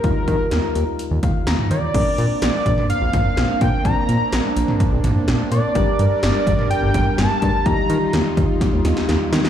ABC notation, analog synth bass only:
X:1
M:4/4
L:1/16
Q:1/4=126
K:Bb
V:1 name="Analog synth bass" clef=bass
E,, z E, z E,, z E,, z2 E,, E,, z E,, z E, z | B,,, z B,, z B,,, z B,,, z2 B,,, B,,, z B,,, z B,, z | B,,, z B,, z B,,, z B,,, z2 B,,, B,,, z B,,, z B,, z | G,,, z G,, z G,,, z G,,, z2 G,,, G,,, z G,,, z G,, z |
E,, z E, z E,, z E,, z2 E,, E,, z E,, z E, z |]